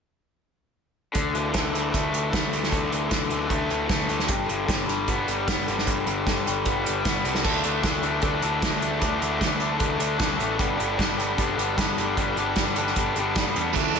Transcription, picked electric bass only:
1.16 1.33 D2 medium
1.35 1.53 D2 medium
1.55 1.73 D2 medium
1.74 1.92 D2 medium
1.94 2.12 D2 medium
2.14 2.32 D2 medium
2.34 2.52 D2 medium
2.52 2.71 D2 medium
2.72 2.90 D2 medium
2.92 3.10 D2 medium
3.12 3.30 D2 medium
3.30 3.49 D2 medium
3.51 3.69 D2 medium
3.71 3.89 D2 medium
3.89 4.08 D2 medium
4.10 4.28 D2 medium
4.29 4.48 G1 medium
4.50 4.68 G1 medium
4.68 4.87 G1 medium
4.88 5.07 G1 medium
5.09 5.27 G1 medium
5.27 5.46 G1 medium
5.48 5.67 G1 medium
5.68 5.86 G1 medium
5.88 6.06 G1 medium
6.07 6.25 G1 medium
6.27 6.45 G1 medium
6.48 6.65 G1 medium
6.66 6.84 G1 medium
6.88 7.05 G1 medium
7.05 7.24 G1 medium
7.25 7.43 C2 medium
7.45 7.62 D2 medium
7.65 7.82 D2 medium
7.84 8.19 D2 medium
8.23 8.41 D2 medium
8.43 8.61 D2 medium
8.63 8.81 D2 medium
8.81 9.00 D2 medium
9.01 9.19 D2 medium
9.22 9.40 D2 medium
9.41 9.77 D2 medium
9.81 9.99 D2 medium
9.99 10.18 D2 medium
10.20 10.38 D2 medium
10.39 10.57 A1 medium
10.60 10.78 G1 medium
10.80 10.98 G1 medium
10.99 11.35 G1 medium
11.39 11.57 G1 medium
11.58 11.76 G1 medium
11.78 11.96 G1 medium
11.97 12.15 G1 medium
12.17 12.35 G1 medium
12.36 12.54 G1 medium
12.57 12.93 G1 medium
12.97 13.14 G1 medium
13.16 13.34 G1 medium
13.36 13.54 G1 medium
13.56 13.74 E2 medium
13.76 13.94 D2 loud
13.95 14.00 D2 medium

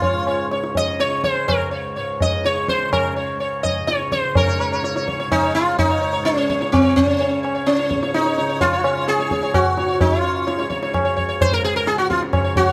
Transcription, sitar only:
0.00 0.47 F4 loud
0.00 0.26 C#5 soft
0.27 0.50 C#5 soft
0.52 0.74 C#5 soft
0.77 1.01 D#5 loud
1.00 1.23 C#5 medium
1.24 1.48 C5 medium
1.48 1.71 A#4 medium
1.71 1.94 C#5 soft
1.96 2.19 C#5 soft
2.22 2.46 D#5 loud
2.45 2.69 C#5 medium
2.69 2.92 C5 medium
2.93 3.15 A#4 medium
3.16 3.39 C#5 soft
3.40 3.62 C#5 soft
3.63 3.88 D#5 medium
3.87 4.12 C#5 medium
4.12 4.36 C5 medium
4.37 5.04 A#4 medium
4.37 4.47 C#5 soft
4.48 4.59 C#5 soft
4.60 4.71 C#5 soft
4.72 4.83 C#5 soft
4.84 4.95 C#5 soft
4.96 5.06 C#5 soft
5.08 5.19 C#5 soft
5.20 5.42 C#5 soft
5.32 5.54 D#4 loud
5.43 5.65 C#5 soft
5.55 5.78 F4 loud
5.78 6.27 D#4 loud
5.90 6.00 C#5 soft
6.01 6.12 C#5 soft
6.13 6.35 C#5 soft
6.25 6.72 C#4 loud
6.37 6.48 C#5 soft
6.49 6.59 C#5 soft
6.61 6.82 C#5 soft
6.72 6.96 C4 medium
6.83 7.06 C#5 soft
6.96 7.40 C#4 medium
7.07 7.18 C#5 soft
7.19 7.30 C#5 soft
7.31 7.42 C#5 soft
7.43 7.54 C#5 soft
7.55 7.77 C#5 soft
7.66 8.15 C#4 medium
7.78 7.88 C#5 soft
7.90 8.01 C#5 soft
8.02 8.24 C#5 soft
8.14 8.61 D#4 medium
8.26 8.36 C#5 soft
8.38 8.48 C#5 soft
8.49 8.71 C#5 soft
8.61 9.08 F4 loud
8.73 8.83 C#5 soft
8.84 8.96 C#5 soft
8.97 9.19 C#5 soft
9.08 9.54 G#4 loud
9.20 9.31 C#5 soft
9.32 9.42 C#5 soft
9.43 9.65 C#5 soft
9.54 10.00 F#4 loud
9.78 9.87 C#5 soft
9.88 10.11 C#5 soft
10.01 10.20 D#4 medium
10.12 10.22 C#5 soft
10.20 10.67 F4 medium
10.20 10.45 C#5 soft
10.47 10.57 C#5 soft
10.59 10.69 C#5 soft
10.70 10.82 C#5 soft
10.83 10.92 C#5 soft
10.93 11.04 C#5 soft
11.05 11.15 C#5 soft
11.17 11.28 C#5 soft
11.29 11.50 C#5 soft
11.42 11.52 C5 loud
11.53 11.64 A#4 loud
11.64 11.76 G#4 medium
11.76 11.88 A#4 medium
11.87 11.98 G#4 loud
11.98 12.09 F#4 medium
12.10 12.21 F4 medium
12.33 12.43 C#5 soft
12.44 12.66 C#5 soft
12.57 12.72 F#4 loud
12.67 12.72 C#5 soft

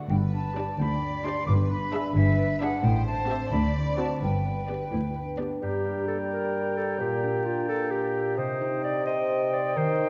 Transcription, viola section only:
0.56 0.73 D4 soft
0.56 0.73 G4 soft
1.24 1.41 D4 medium
1.24 1.42 G4 medium
1.93 2.10 D4 medium
1.93 2.10 G#4 medium
2.61 2.78 D4 medium
2.61 2.78 G#4 medium
3.29 3.46 C4 medium
3.29 3.46 G4 medium
3.98 4.16 C4 soft
3.98 4.16 F#4 soft
4.68 4.86 B3 soft
4.68 4.86 G4 soft
5.39 5.56 B3 soft
5.39 5.56 G4 soft

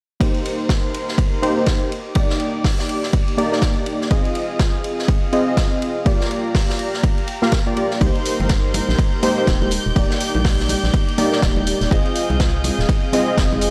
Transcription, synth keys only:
0.20 1.40 A#3 medium
0.20 1.40 D#4 medium
0.20 1.40 G4 medium
0.20 1.40 C5 medium
1.42 1.55 A#3 medium
1.42 1.55 D#4 medium
1.42 1.55 G4 medium
1.42 1.55 C5 loud
1.57 1.90 A#3 medium
1.57 1.90 D#4 medium
1.57 1.90 G4 medium
1.57 1.90 C5 medium
2.15 3.35 A#3 medium
2.15 3.35 D#4 medium
2.15 3.35 G4 medium
2.15 3.36 D5 medium
3.37 3.50 A#3 medium
3.37 3.50 D#4 medium
3.37 3.50 G4 medium
3.37 3.50 D5 loud
3.52 4.08 A#3 medium
3.52 4.08 D#4 medium
3.52 4.09 G4 medium
3.52 4.09 D5 medium
4.10 5.30 C4 medium
4.10 5.30 F4 medium
4.10 5.31 G#4 medium
4.10 5.31 D#5 medium
5.33 5.45 C4 medium
5.33 5.45 F4 medium
5.33 5.45 G#4 medium
5.33 5.45 D#5 loud
5.47 6.03 C4 medium
5.47 6.04 F4 medium
5.47 6.04 G#4 medium
5.47 6.04 D#5 medium
6.05 7.25 A#3 medium
6.05 7.25 F4 medium
6.05 7.26 G4 medium
6.05 7.26 D5 medium
7.42 7.58 A#3 medium
7.42 7.58 F4 medium
7.42 7.58 G4 medium
7.42 7.58 F5 medium
7.66 7.74 A#3 medium
7.66 7.74 F4 medium
7.66 7.74 G4 medium
7.66 7.74 D5 medium
7.76 7.98 A#3 medium
7.76 7.98 F4 medium
7.76 7.98 G4 medium
7.76 7.98 D5 medium
8.00 9.20 A#3 medium
8.00 9.21 D#4 medium
8.00 9.21 G4 medium
8.00 9.21 C5 medium
9.23 9.35 A#3 medium
9.23 9.35 D#4 medium
9.23 9.35 G4 medium
9.23 9.35 C5 loud
9.37 9.70 A#3 medium
9.37 9.71 D#4 medium
9.37 9.71 G4 medium
9.37 9.71 C5 medium
9.96 11.15 A#3 medium
9.96 11.16 D#4 medium
9.96 11.16 G4 medium
9.96 11.16 D5 medium
11.18 11.30 A#3 medium
11.18 11.30 D#4 medium
11.18 11.30 G4 medium
11.18 11.31 D5 loud
11.32 11.89 A#3 medium
11.32 11.89 D#4 medium
11.32 11.89 G4 medium
11.32 11.89 D5 medium
11.91 13.11 C4 medium
11.91 13.11 F4 medium
11.91 13.11 G#4 medium
11.91 13.11 D#5 medium
13.13 13.25 C4 medium
13.13 13.26 F4 medium
13.13 13.26 G#4 medium
13.13 13.26 D#5 loud
13.27 13.70 C4 medium
13.27 13.70 F4 medium
13.27 13.70 G#4 medium
13.27 13.70 D#5 medium

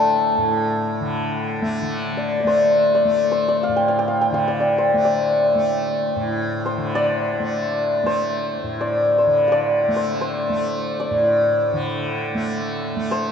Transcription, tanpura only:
0.00 0.37 A2 medium
0.00 1.00 D3 medium
0.00 1.62 A3 medium
0.38 3.68 A2 medium
1.00 1.81 D3 medium
1.62 2.44 A3 medium
1.81 4.31 D3 medium
2.44 3.05 A3 medium
3.05 4.93 A3 medium
3.68 6.16 A2 medium
4.31 6.77 D3 medium
4.94 5.55 A3 medium
5.55 7.39 A3 medium
6.16 8.63 A2 medium
6.77 9.26 D3 medium
7.39 8.03 A3 medium
8.03 9.88 A3 medium
8.64 11.10 A2 medium
9.26 11.73 D3 medium
9.88 10.50 A3 medium
10.50 12.35 A3 medium
11.11 13.32 A2 medium
11.73 13.32 D3 medium
12.35 12.96 A3 medium
12.96 13.32 A3 medium

